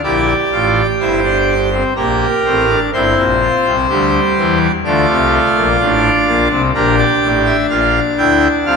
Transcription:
0.04 A#1 A#2 E4 G4 D5
0.52 A1 A2 F4
1.00 G1 G2 E4 C5
1.24 D4
1.72 C4
1.96 A#1 A#2 A#3 G4 A#4
2.45 A1 A2 C4
2.70 D4
2.93 G1 G2 C4 E4 C5
3.18 A#1 A#2
3.42 F4
3.66 C2 C3
3.89 D2 D3 G3 G4
4.38 E2 E3
4.85 D2 D3 A3 F4 D5
5.09 C2 C3
5.56 A#1 A#2
5.80 A1 A2 D4
6.27 A#1 A#2
6.50 C2 C3
6.74 A#1 A#2 D4 G4 A#4
6.98 D5
7.22 A1 A2
7.45 E5
7.70 A#1 A#2 F4 F5
8.18 D2 D3 E4 G5
8.66 C2 C3 F4 F5

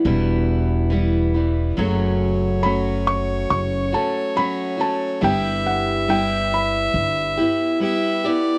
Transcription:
Already playing: G5
0.05 E1 E2 B2 E3 G3 B3 E4
0.90 E3 G3 B3 E4
1.34 E3 G3 B3 E4
1.77 F#1 F#2 C#3 F#3 A3 C#4 F#4 C#5
2.63 F#3 A3 C#4 F#4 B5
3.07 C#6
3.50 F#1 C#6
3.92 F#3 A3 C#4 F#4 A5
4.36 F#3 A3 C#4 F#4 B5
4.77 F#3 A3 C#4 F#4 A5
5.21 G1 G3 B3 E4 G4 E5 G5
5.67 F#5
6.08 G3 B3 E4 G4 G5
6.54 B5
6.94 G1
7.37 B3 E4 G4
7.80 G3 B3 E4 G4 E5
8.24 B3 E4 G4 D5

